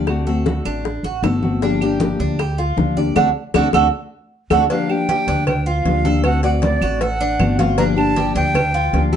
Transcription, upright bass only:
0, 0, Header, 1, 2, 480
1, 0, Start_track
1, 0, Key_signature, -2, "minor"
1, 0, Tempo, 385356
1, 90, Time_signature, 4, 2, 24, 8
1, 11415, End_track
2, 0, Start_track
2, 0, Title_t, "Upright bass"
2, 0, Program_c, 0, 32
2, 0, Note_on_c, 0, 38, 83
2, 738, Note_off_c, 0, 38, 0
2, 810, Note_on_c, 0, 33, 83
2, 1259, Note_off_c, 0, 33, 0
2, 1285, Note_on_c, 0, 33, 66
2, 1513, Note_off_c, 0, 33, 0
2, 1526, Note_on_c, 0, 31, 91
2, 2658, Note_off_c, 0, 31, 0
2, 2734, Note_on_c, 0, 38, 91
2, 3406, Note_off_c, 0, 38, 0
2, 3448, Note_on_c, 0, 38, 88
2, 3899, Note_off_c, 0, 38, 0
2, 3933, Note_on_c, 0, 38, 85
2, 4114, Note_off_c, 0, 38, 0
2, 4411, Note_on_c, 0, 38, 95
2, 4593, Note_off_c, 0, 38, 0
2, 4647, Note_on_c, 0, 38, 93
2, 4830, Note_off_c, 0, 38, 0
2, 5608, Note_on_c, 0, 38, 104
2, 5791, Note_off_c, 0, 38, 0
2, 6569, Note_on_c, 0, 38, 100
2, 7242, Note_off_c, 0, 38, 0
2, 7291, Note_on_c, 0, 38, 85
2, 8418, Note_off_c, 0, 38, 0
2, 8485, Note_on_c, 0, 33, 98
2, 9159, Note_off_c, 0, 33, 0
2, 9211, Note_on_c, 0, 31, 92
2, 10336, Note_off_c, 0, 31, 0
2, 10403, Note_on_c, 0, 38, 94
2, 11076, Note_off_c, 0, 38, 0
2, 11126, Note_on_c, 0, 38, 93
2, 11415, Note_off_c, 0, 38, 0
2, 11415, End_track
0, 0, End_of_file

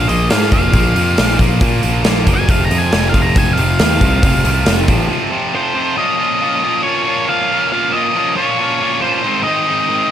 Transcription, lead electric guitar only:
0, 0, Header, 1, 2, 480
1, 0, Start_track
1, 0, Key_signature, -5, "minor"
1, 0, Tempo, 435414
1, 823, Time_signature, 4, 2, 24, 8
1, 11147, End_track
2, 0, Start_track
2, 0, Title_t, "Lead electric guitar"
2, 0, Program_c, 0, 29
2, 95, Note_on_c, 0, 75, 78
2, 332, Note_off_c, 0, 75, 0
2, 339, Note_on_c, 0, 77, 89
2, 574, Note_off_c, 0, 77, 0
2, 586, Note_on_c, 0, 77, 83
2, 1517, Note_off_c, 0, 77, 0
2, 2590, Note_on_c, 0, 80, 104
2, 2743, Note_off_c, 0, 80, 0
2, 2747, Note_on_c, 0, 77, 81
2, 2902, Note_off_c, 0, 77, 0
2, 2917, Note_on_c, 0, 82, 78
2, 3067, Note_off_c, 0, 82, 0
2, 3067, Note_on_c, 0, 80, 91
2, 3222, Note_off_c, 0, 80, 0
2, 3239, Note_on_c, 0, 80, 81
2, 3410, Note_off_c, 0, 80, 0
2, 3410, Note_on_c, 0, 77, 90
2, 3547, Note_on_c, 0, 82, 95
2, 3554, Note_off_c, 0, 77, 0
2, 3702, Note_off_c, 0, 82, 0
2, 3728, Note_on_c, 0, 80, 89
2, 3892, Note_off_c, 0, 80, 0
2, 3892, Note_on_c, 0, 77, 103
2, 5277, Note_off_c, 0, 77, 0
2, 6119, Note_on_c, 0, 72, 84
2, 6583, Note_off_c, 0, 72, 0
2, 6588, Note_on_c, 0, 75, 111
2, 7526, Note_off_c, 0, 75, 0
2, 7530, Note_on_c, 0, 73, 108
2, 8031, Note_off_c, 0, 73, 0
2, 8032, Note_on_c, 0, 77, 102
2, 8474, Note_off_c, 0, 77, 0
2, 8513, Note_on_c, 0, 77, 121
2, 8736, Note_on_c, 0, 75, 115
2, 8755, Note_off_c, 0, 77, 0
2, 9216, Note_off_c, 0, 75, 0
2, 9220, Note_on_c, 0, 73, 92
2, 9933, Note_off_c, 0, 73, 0
2, 9937, Note_on_c, 0, 72, 107
2, 10396, Note_off_c, 0, 72, 0
2, 10401, Note_on_c, 0, 75, 110
2, 11147, Note_off_c, 0, 75, 0
2, 11147, End_track
0, 0, End_of_file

